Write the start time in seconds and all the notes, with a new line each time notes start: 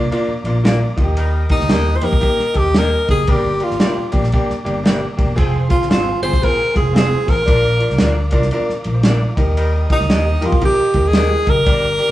Already playing: D5 F5 A#5 D6
0.11 A#3 D4 F4, ride
0.28 muted fingered electric bass stroke
0.44 A#1 A#3 D4 F4, ride
0.64 A#3 D4 F4 A#4 D5 F5, snare, ride
0.96 D#2 A#3 D#4 F4 D#5 G5 D#6, kick, ride
1.04 G4
1.17 G3 D#4 A#4, ride
1.49 A#3 D#4 G4, kick, ride
1.60 D2, snare
1.68 D#2 A#3 D#4 G4 A#4 D#5, snare, ride
1.96 C5
2.01 F2 A#3 D#4 G4 A#4, ride
2.13 kick
2.21 A#3 D#4 G4, kick, ride
2.38 muted fingered electric bass stroke, snare
2.53 D#2 A#3 D#4 G4, kick, ride
2.74 A#3 D#4 G4 A#4 D#5, snare, ride
2.78 A#4
3.09 F#1 A#3 D#4 G4 G#4, kick, ride
3.27 G1 G3 A#3 D4 G4 A#4 D5 D6, kick, ride
3.60 A#3 D4 F4 G4, ride
3.70 G#1, snare
3.80 A#3 D4 G4 A#4 D5, snare, ride
3.97 muted fingered electric bass stroke
4.12 A#1 A#3 D4 G4, kick, ride
4.23 snare
4.32 A#3 D4 G4, kick, ride
4.50 muted fingered electric bass stroke, snare
4.65 G1 A#3 D4 G4, ride
4.84 A#3 D4 G4 A#4 D5, snare, ride
5.17 E1 A#3 D4 G4, kick, ride
5.35 F1 F3 C4 F4 G#4, kick, ride, muted conga
5.39 C5 F5 G#5 C6
5.55 muted conga
5.69 C4 F4 G#4, kick, ride
5.81 G1, snare, high conga
5.89 G#1 C4 F4 G#4 C5, snare, ride
6.08 muted conga
6.22 G1 C4 F4 G#4 C5, ride, high conga, low conga
6.33 kick, snare, high conga
6.42 C4 F4 G#4 A#4, kick, ride, low conga
6.59 muted fingered electric bass stroke, muted conga
6.74 F1 C4 F4 G#4, kick, ride, high conga
6.93 C4 F4 G#4 C5, snare, ride
6.97 G#4
7.12 muted conga, high conga
7.26 A1 C4 F4 G#4, kick, open hi-hat, ride
7.30 A#4
7.46 A#1 F3 D4 F4 A#4 D5 A#5 D6, kick, hi-hat pedal, ride
7.64 muted conga
7.79 D4 F4 A#4, ride
7.90 C2, snare, high conga
7.98 D2 D4 F4 A#4 D5, snare, ride
8.17 muted conga
8.31 C2 D4 F4 A#4, kick, ride, high conga, low conga
8.42 snare, high conga
8.51 D4 F4 A#4, ride, muted conga, low conga
8.69 muted fingered electric bass stroke, snare
8.84 A#1 A#4, ride, high conga
8.94 C5
9.03 D4 F4 A#4 D5, snare, ride
9.22 F5, high conga
9.36 D#2 D#4 G4 A#4 D#5 G5 D#6, kick, ride
9.57 G3 D#4 A#4, ride, muted conga
9.75 muted conga
9.89 D#4 G4 A#4, kick, ride
10.00 D2, snare, high conga
10.09 D#2 D#4 G4 A#4 D#5, snare, ride, muted conga
10.27 muted conga
10.41 F2 D#4 G4 A#4, ride, high conga, low conga
10.46 F4
10.52 kick, high conga
10.61 D#4 G4 A#4, kick, ride, muted conga, low conga
10.65 G4
10.79 muted fingered electric bass stroke
10.94 D#2 D#4 G4 A#4, kick, ride, high conga
11.08 G#4
11.13 D#4 G4 A#4 D#5, snare, ride
11.31 muted conga, high conga
11.47 F#1 D#4 G4 A#4, kick, ride
11.65 G1 G3 D4 G4 A#4 D5 D6, kick, ride
11.99 D4 G4 A#4, ride